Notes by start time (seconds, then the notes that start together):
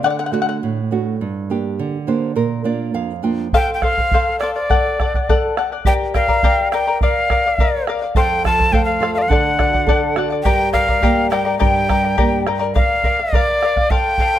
0.03 D3 D5 F#5
0.10 F#5
0.19 F#5
0.26 F#5
0.32 A3 D4 F#4 F#5
0.42 F#5
0.49 F#5
0.63 A2
0.91 A3 D4 F#4
1.21 G2
1.50 A#3 D4 G4
1.79 D3
2.07 A#3 D4 G4 C5
2.36 A#2 A#4
2.64 A#3 D4 F4 D5
2.94 F2 F5
3.23 A#3 D4 F4 G5
3.53 A4 C5 F5 G5, bombo low
3.74 G5
3.82 A4 C5 F5, bombo rim, bombo low
3.98 C5 F5, bombo low
4.11 A4 C5 F5, bombo low
4.39 A4 C5 D5 F5, bombo rim
4.54 C5 D5 F5
4.70 A4 D5 F#5, bombo low
5.00 A4 D5 F#5, bombo rim, bombo low
5.14 D5 F#5, bombo low
5.29 A4 D5 F#5, bombo low
5.57 A4 D5 F#5, bombo rim
5.72 D5 F#5
5.85 G4 A#4 D5 G5 A#5, bombo low
6.14 A#4 D5 F5 G5 A#5, bombo rim, bombo low
6.28 A#4 D5 A#5, bombo low
6.43 G4 A#4 D5 G5 A#5, bombo low
6.72 A#4 D5 G5 A#5, bombo rim
6.87 A#4 D5 A#5
7.01 A#4 D5 F5, bombo low
7.30 A#4 D5 F5, bombo rim, bombo low
7.46 D5 F5
7.58 A#4 D5 F5, bombo low
7.87 A#4 D5 F5, bombo rim
8.02 D5 F5
8.15 F2 A4 C5 F5 G5, bombo low
8.44 F3 A4 C5 F5 A5, bombo rim, bombo low
8.59 C5 F5, bombo low
8.71 A3 A4 C5 F5 G5, bombo low
8.85 F5
9.00 F3 A4 C5 F5, bombo rim
9.14 C5 F5
9.18 D5 F5
9.29 D3 A4 D5 F#5, bombo low
9.59 F#4 A4 D5 F#5, bombo rim, bombo low
9.74 D5 F#5, bombo low
9.87 A4 D5 F#5, bombo low
10.16 F#4 A4 D5 F#5, bombo rim
10.30 D5 F#5
10.43 G2 G4 A#4 D5 G5 A#5, bombo low
10.73 G3 A#4 D5 F5 G5 A#5, bombo rim, bombo low
10.88 A#4 D5 A#5, bombo low
11.02 A#3 G4 A#4 D5 G5 A#5, bombo low
11.30 G3 A#4 D5 G5 A#5, bombo rim
11.45 A#4 D5 A#5
11.59 G2 G4 A#4 D5 G5 A#5, bombo low
11.89 G3 A#4 D5 G5 A#5, bombo rim, bombo low
12.04 A#4 D5 A#5
12.18 A#3 G4 A#4 D5 G5 A#5, bombo low
12.47 G3 A#4 D5 G5 A#5, bombo rim
12.59 A#4 D5 A#5
12.75 A#4 D5 F5, bombo low
13.03 A#4 D5 F5, bombo low
13.19 D5 F5
13.33 A#4 D5 F5, bombo low
13.63 A#4 D5 F5, bombo rim
13.76 D5 F5, bombo low
13.90 A4 C5 F5 G5, bombo low
14.18 A4 C5 F5, bombo low
14.34 C5 F5